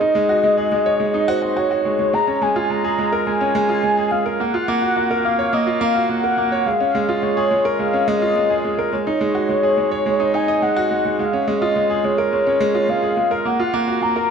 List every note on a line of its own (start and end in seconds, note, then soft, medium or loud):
0.00 0.14 D#4 medium
0.00 1.31 D#5 loud
0.15 0.23 G#3 medium
0.29 0.43 F#4 medium
0.43 0.57 G#3 medium
0.57 0.66 G#4 medium
0.72 0.85 G#3 medium
0.86 0.99 C#5 medium
1.00 1.08 G#3 medium
1.14 1.28 D#4 medium
1.28 1.41 F#4 loud
1.28 1.59 C5 loud
1.42 1.55 F#4 medium
1.57 1.65 F#4 medium
1.57 2.15 C#5 loud
1.71 1.84 F#4 medium
1.85 1.93 G#3 medium
1.99 2.12 G#3 medium
2.13 2.27 G#3 medium
2.13 2.44 A#5 loud
2.27 2.41 C#4 medium
2.42 2.50 G#3 medium
2.42 2.72 G#5 loud
2.56 2.69 F4 medium
2.70 2.83 G#3 medium
2.70 3.26 A#5 loud
2.84 2.92 G#4 medium
2.99 3.12 G#3 medium
3.12 3.26 A#4 medium
3.27 3.35 G#3 medium
3.27 4.13 G#5 loud
3.41 3.54 C#4 medium
3.55 3.63 G#3 loud
3.69 3.82 F4 medium
3.83 3.97 G#3 medium
3.97 4.11 G#4 medium
4.11 4.25 G#3 medium
4.11 4.41 F5 medium
4.26 4.39 A#4 medium
4.40 4.53 A#3 medium
4.40 5.26 F#5 loud
4.54 4.67 F4 medium
4.68 4.76 A#3 loud
4.82 4.96 F#4 medium
4.97 5.10 A#3 medium
5.11 5.19 A#4 medium
5.25 5.38 A#3 medium
5.25 5.55 F5 medium
5.39 5.52 C#5 medium
5.53 5.61 A#3 medium
5.53 5.83 D#5 medium
5.67 5.80 F4 medium
5.81 5.89 A#3 loud
5.81 6.11 F5 loud
5.95 6.09 F#4 medium
6.09 6.23 A#3 medium
6.09 6.68 F#5 loud
6.24 6.37 A#4 medium
6.38 6.51 A#3 medium
6.52 6.65 C#5 medium
6.66 6.80 G#3 medium
6.66 7.22 F5 loud
6.80 6.94 C#4 medium
6.95 7.03 G#3 medium
7.09 7.22 F4 medium
7.22 7.36 G#3 medium
7.22 7.80 C#5 loud
7.37 7.45 G#4 medium
7.51 7.64 G#3 medium
7.65 7.79 A#4 medium
7.79 7.87 G#3 medium
7.79 8.09 F5 loud
7.93 8.07 C#4 medium
8.08 8.16 G#3 loud
8.08 8.64 D#5 medium
8.22 8.35 F4 medium
8.36 8.49 G#3 medium
8.50 8.64 G#4 medium
8.64 8.78 G#3 medium
8.78 8.92 A#4 medium
8.92 9.06 G#3 medium
8.92 10.36 C#5 loud
9.07 9.20 D#4 medium
9.21 9.29 G#3 medium
9.35 9.48 F#4 medium
9.49 9.63 G#3 medium
9.63 9.71 G#4 medium
9.77 9.91 G#3 medium
9.91 10.05 C#5 medium
10.06 10.14 G#3 medium
10.20 10.32 D#4 medium
10.34 10.42 D#4 medium
10.34 10.64 G#5 loud
10.48 10.56 D#5 medium
10.62 10.70 G#3 medium
10.62 11.21 F#5 loud
10.77 10.90 F#4 loud
10.91 11.04 G#3 medium
11.05 11.18 G#3 medium
11.19 11.33 G#3 medium
11.19 11.49 F5 loud
11.33 11.47 C#4 medium
11.48 11.55 G#3 medium
11.48 12.06 D#5 loud
11.62 11.75 F4 medium
11.76 11.89 G#3 medium
11.90 11.98 G#4 medium
12.04 12.18 G#3 medium
12.04 12.32 C#5 medium
12.18 12.32 A#4 medium
12.32 12.40 G#3 medium
12.32 12.91 C#5 loud
12.47 12.60 C#4 medium
12.60 12.69 G#3 loud
12.75 12.88 F4 medium
12.89 13.02 G#3 medium
12.89 13.48 F5 loud
13.03 13.16 G#4 medium
13.17 13.30 G#3 medium
13.31 13.45 A#4 medium
13.45 13.59 A#3 medium
13.45 14.04 F#5 loud
13.60 13.73 F4 medium
13.74 13.82 A#3 loud
13.88 14.01 F#4 medium
14.02 14.15 A#3 medium
14.02 14.30 A#5 loud
14.16 14.24 A#4 medium